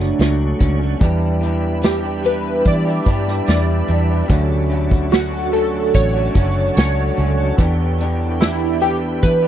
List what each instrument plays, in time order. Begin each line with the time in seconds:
Already playing: fingered electric bass F#1, clean electric guitar D3 F#3 A3, tonewheel organ A3 D4 F#4 C#5, synth keys D4
0.19 fingered electric bass C#2, clean electric guitar F#3 A3, snare, closed hi-hat
0.59 fingered electric bass C#2, clean electric guitar D3 F#3 A3 C#4, kick, closed hi-hat
0.79 clean electric guitar F#3 A3 C#4
0.99 fingered electric bass E2, clean electric guitar E3 B3 D4 G4, tonewheel organ G3 D4 E4, ambient pad G4 E5 B5, kick, closed hi-hat
1.04 tonewheel organ B4
1.41 clean electric guitar E3 B3 D4 G4, closed hi-hat
1.82 clean electric guitar E3 B3 D4 G4, synth keys G4, snare, closed hi-hat
2.03 clean electric guitar B3 D4 G4
2.23 clean electric guitar E3 B3 D4 G4, synth keys B4, closed hi-hat
2.65 fingered electric bass E3, synth keys D5, kick, closed hi-hat
2.85 clean electric guitar B3 D4 G4
3.05 fingered electric bass G2, clean electric guitar E3 B3 D4 G4, kick, closed hi-hat
3.28 snare
3.47 fingered electric bass E2, clean electric guitar E3 B3 D4 G4, synth keys D5, snare, closed hi-hat
3.88 fingered electric bass E2, clean electric guitar E3 B3 D4 G4, closed hi-hat
4.08 clean electric guitar B3 D4 G4
4.28 fingered electric bass D2, clean electric guitar D3 A3 C#4 F#4, tonewheel organ F#3 C#4 D4, ambient pad A4 F#5 C#6, kick, closed hi-hat
4.33 tonewheel organ A4
4.69 clean electric guitar D3 A3 C#4 F#4, closed hi-hat
4.91 kick
5.11 clean electric guitar D3 A3 C#4 F#4, synth keys F#4, snare, closed hi-hat
5.31 clean electric guitar A3 C#4 F#4
5.52 clean electric guitar D3 A3 C#4 F#4, synth keys A4, closed hi-hat
5.94 fingered electric bass A1, synth keys C#5, kick, closed hi-hat
6.14 clean electric guitar A3 C#4 F#4
6.34 fingered electric bass F#1, clean electric guitar D3 A3 C#4 F#4, kick, closed hi-hat
6.77 fingered electric bass C#2, clean electric guitar A3 C#4 F#4, synth keys C#5, snare, closed hi-hat
7.17 fingered electric bass C#2, clean electric guitar D3 A3 C#4 F#4, closed hi-hat
7.37 clean electric guitar A3 C#4 F#4
7.56 fingered electric bass E2, tonewheel organ E3 B3 D4, clean electric guitar E3 B3 D4 G4, ambient pad G4 E5 B5, kick, closed hi-hat
7.61 tonewheel organ G4
7.99 clean electric guitar E3 B3 D4 G4, closed hi-hat
8.40 clean electric guitar E3 B3 D4 G4, synth keys E4, snare, closed hi-hat
8.61 clean electric guitar B3 D4 G4
8.81 clean electric guitar E3 B3 D4 G4, synth keys G4, closed hi-hat
9.23 fingered electric bass E3, synth keys B4, kick, closed hi-hat
9.43 clean electric guitar G4